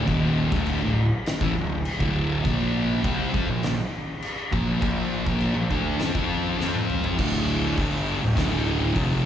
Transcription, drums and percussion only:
0.08 kick loud
0.08 crash medium
0.52 kick loud
0.52 snare soft
0.66 crash medium
1.26 snare loud
1.26 crash medium
1.41 kick loud
1.85 crash medium
2.00 kick loud
2.45 kick loud
2.45 crash medium
3.04 kick loud
3.04 crash medium
3.34 kick loud
3.63 snare loud
3.63 crash medium
4.22 crash medium
4.53 kick loud
4.82 kick loud
4.82 crash medium
5.27 kick loud
5.41 crash medium
5.71 kick loud
6.00 snare loud
6.00 crash medium
6.15 kick loud
6.61 snare medium
6.75 high tom medium
6.90 mid tom medium
7.04 floor tom loud
7.19 kick loud
7.19 crash loud
7.77 kick loud
7.77 open hi-hat medium
8.37 kick loud
8.37 snare loud
8.37 open hi-hat medium
8.95 kick loud
8.95 open hi-hat medium

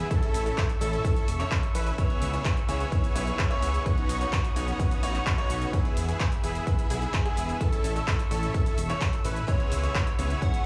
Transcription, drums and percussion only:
0.11 kick loud
0.11 closed hi-hat medium
0.11 cabasa soft
0.23 closed hi-hat soft
0.34 open hi-hat loud
0.34 cabasa medium
0.46 closed hi-hat soft
0.46 cabasa soft
0.58 kick loud
0.58 clap loud
0.58 closed hi-hat medium
0.58 cabasa soft
0.70 closed hi-hat soft
0.70 cabasa soft
0.81 open hi-hat loud
0.81 cabasa medium
0.93 closed hi-hat soft
0.93 cabasa soft
1.05 kick loud
1.05 closed hi-hat medium
1.05 cabasa soft
1.16 closed hi-hat soft
1.16 cabasa soft
1.28 open hi-hat loud
1.28 cabasa medium
1.40 clap soft
1.40 closed hi-hat soft
1.40 cabasa soft
1.51 kick loud
1.51 clap loud
1.51 closed hi-hat medium
1.51 cabasa soft
1.63 closed hi-hat soft
1.75 open hi-hat loud
1.75 cabasa medium
1.87 closed hi-hat soft
1.87 cabasa soft
1.98 kick loud
1.98 closed hi-hat medium
1.98 cabasa soft
2.10 closed hi-hat soft
2.22 open hi-hat loud
2.22 cabasa medium
2.34 closed hi-hat soft
2.34 cabasa soft
2.45 kick loud
2.45 clap loud
2.45 closed hi-hat medium
2.45 cabasa soft
2.57 closed hi-hat soft
2.57 cabasa soft
2.69 open hi-hat medium
2.69 cabasa medium
2.80 closed hi-hat soft
2.80 cabasa soft
2.92 kick loud
2.92 closed hi-hat medium
2.92 cabasa soft
3.04 closed hi-hat soft
3.04 cabasa soft
3.16 open hi-hat loud
3.16 cabasa medium
3.27 closed hi-hat soft
3.27 cabasa soft
3.39 kick loud
3.39 clap loud
3.39 closed hi-hat medium
3.39 cabasa soft
3.51 closed hi-hat soft
3.62 open hi-hat loud
3.62 cabasa medium
3.74 closed hi-hat soft
3.74 cabasa soft
3.86 kick loud
3.86 closed hi-hat medium
3.86 cabasa soft
3.98 closed hi-hat soft
4.09 open hi-hat loud
4.09 cabasa medium
4.21 closed hi-hat soft
4.21 cabasa soft
4.33 kick loud
4.33 clap loud
4.33 closed hi-hat medium
4.33 cabasa soft
4.45 closed hi-hat soft
4.45 cabasa soft
4.56 open hi-hat medium
4.56 cabasa medium
4.68 closed hi-hat soft
4.68 cabasa soft
4.80 kick loud
4.80 closed hi-hat medium
4.80 cabasa soft
4.91 closed hi-hat soft
4.91 cabasa soft
5.03 open hi-hat loud
5.03 cabasa medium
5.15 clap soft
5.15 closed hi-hat soft
5.15 cabasa soft
5.26 kick loud
5.26 clap loud
5.26 closed hi-hat medium
5.26 cabasa soft
5.38 closed hi-hat soft
5.50 open hi-hat loud
5.50 cabasa medium
5.62 closed hi-hat soft
5.62 cabasa soft
5.73 kick loud
5.73 closed hi-hat medium
5.73 cabasa soft
5.85 closed hi-hat soft
5.97 open hi-hat loud
5.97 cabasa medium
6.09 closed hi-hat soft
6.09 cabasa soft
6.20 kick loud
6.20 clap loud
6.20 closed hi-hat medium
6.20 cabasa soft
6.32 closed hi-hat soft
6.32 cabasa soft
6.44 open hi-hat medium
6.44 cabasa medium
6.55 closed hi-hat soft
6.55 cabasa soft
6.67 kick loud
6.67 closed hi-hat medium
6.67 cabasa soft
6.79 closed hi-hat soft
6.79 cabasa soft
6.90 open hi-hat loud
6.90 cabasa medium
7.02 closed hi-hat soft
7.02 cabasa soft
7.14 kick loud
7.14 clap loud
7.14 closed hi-hat medium
7.14 cabasa soft
7.26 closed hi-hat soft
7.37 open hi-hat medium
7.37 cabasa medium
7.49 closed hi-hat soft
7.49 cabasa soft
7.61 kick loud
7.61 closed hi-hat medium
7.61 cabasa soft
7.73 closed hi-hat soft
7.73 cabasa soft
7.84 open hi-hat loud
7.84 cabasa medium
7.96 closed hi-hat soft
7.96 cabasa soft
8.08 kick loud
8.08 clap loud
8.08 closed hi-hat medium
8.08 cabasa soft
8.19 closed hi-hat soft
8.19 cabasa soft
8.31 open hi-hat medium
8.31 cabasa medium
8.43 closed hi-hat soft
8.43 cabasa soft
8.54 kick loud
8.54 closed hi-hat medium
8.54 cabasa soft
8.66 closed hi-hat soft
8.66 cabasa soft
8.78 open hi-hat loud
8.78 cabasa medium
8.90 clap soft
8.90 closed hi-hat soft
8.90 cabasa soft
9.01 kick loud
9.01 clap loud
9.01 closed hi-hat medium
9.01 cabasa soft
9.13 closed hi-hat soft
9.13 cabasa soft
9.25 open hi-hat medium
9.25 cabasa medium
9.36 closed hi-hat soft
9.36 cabasa soft
9.48 kick loud
9.48 closed hi-hat medium
9.48 cabasa soft
9.60 closed hi-hat soft
9.72 open hi-hat loud
9.72 cabasa medium
9.84 closed hi-hat soft
9.84 cabasa soft
9.95 kick loud
9.95 clap loud
9.95 closed hi-hat medium
9.95 cabasa soft
10.07 closed hi-hat soft
10.07 cabasa soft
10.19 open hi-hat medium
10.19 cabasa medium
10.30 closed hi-hat soft
10.30 cabasa soft
10.42 kick loud
10.42 closed hi-hat medium
10.42 cabasa soft
10.54 closed hi-hat soft
10.54 cabasa soft

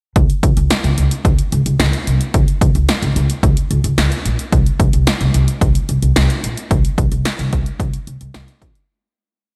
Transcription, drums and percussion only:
0.16 kick loud
0.16 closed hi-hat medium
0.30 closed hi-hat medium
0.43 kick loud
0.43 closed hi-hat medium
0.57 closed hi-hat medium
0.70 snare loud
0.70 closed hi-hat medium
0.84 closed hi-hat soft
0.98 closed hi-hat medium
1.11 closed hi-hat medium
1.25 kick medium
1.25 closed hi-hat medium
1.39 closed hi-hat medium
1.52 closed hi-hat medium
1.66 closed hi-hat medium
1.80 snare loud
1.80 closed hi-hat medium
1.93 closed hi-hat medium
2.07 closed hi-hat medium
2.21 closed hi-hat medium
2.34 kick loud
2.34 closed hi-hat medium
2.48 closed hi-hat soft
2.61 kick loud
2.61 closed hi-hat medium
2.75 closed hi-hat medium
2.89 snare loud
2.89 closed hi-hat medium
3.03 closed hi-hat soft
3.16 closed hi-hat medium
3.30 closed hi-hat medium
3.43 kick medium
3.43 closed hi-hat medium
3.57 closed hi-hat medium
3.71 closed hi-hat medium
3.84 closed hi-hat medium
3.98 snare loud
3.98 closed hi-hat medium
4.12 closed hi-hat medium
4.26 closed hi-hat medium
4.39 closed hi-hat medium
4.53 kick loud
4.53 closed hi-hat medium
4.66 closed hi-hat soft
4.80 kick loud
4.80 closed hi-hat medium
4.93 closed hi-hat medium
5.07 snare loud
5.07 closed hi-hat medium
5.21 closed hi-hat soft
5.34 closed hi-hat medium
5.48 closed hi-hat medium
5.61 kick loud
5.61 closed hi-hat medium
5.75 closed hi-hat medium
5.89 closed hi-hat medium
6.02 closed hi-hat medium
6.16 snare loud
6.16 closed hi-hat medium
6.30 closed hi-hat medium
6.44 closed hi-hat medium
6.57 closed hi-hat medium
6.71 kick loud
6.71 closed hi-hat medium
6.85 closed hi-hat medium
6.98 kick loud
6.98 closed hi-hat medium
7.12 closed hi-hat medium
7.25 snare loud
7.25 closed hi-hat medium
7.39 closed hi-hat soft
7.53 kick medium
7.53 closed hi-hat medium
7.66 closed hi-hat medium
7.80 kick loud
7.80 closed hi-hat medium
7.93 closed hi-hat medium
8.07 closed hi-hat medium
8.21 closed hi-hat medium
8.34 snare loud
8.34 closed hi-hat medium
8.48 closed hi-hat medium
8.62 kick medium
8.62 closed hi-hat medium
8.75 closed hi-hat medium

